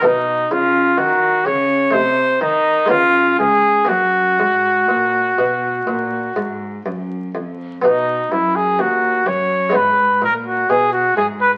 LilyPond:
<<
  \new Staff \with { instrumentName = "Trumpet" } { \time 4/4 \key fis \major \tempo 4 = 63 dis'8 eis'8 fis'8 cis''8 c''8 ees'8 eis'8 gis'8 | fis'2. r4 | \key b \major dis'8 e'16 gis'16 fis'8 cis''8 b'8 ais'16 fis'16 gis'16 fis'16 gis'16 b'16 | }
  \new Staff \with { instrumentName = "Harpsichord" } { \clef bass \time 4/4 \key fis \major << { <b dis'>2 <a ees'>4 <gis b cis'>4 | <ais cis'>8 r2. r8 | \key b \major <b dis'>2 <gis b dis'>2 | } \\ { b,8 cis8 dis8 cis8 c8 ees8 cis8 cis,8 | fis,8 gis,8 ais,8 b,8 ais,8 gis,8 fis,8 eis,8 | b,8 fis,8 dis,8 fis,8 gis,8 ais,8 b,8 gis,8 | } >> }
  \new Staff \with { instrumentName = "Cello" } { \clef bass \time 4/4 \key fis \major b,8 cis8 dis8 cis8 c8 ees8 cis8 cis,8 | fis,8 gis,8 ais,8 b,8 ais,8 gis,8 fis,8 eis,8 | \key b \major b,8 fis,8 dis,8 fis,8 gis,8 ais,8 b,8 gis,8 | }
>>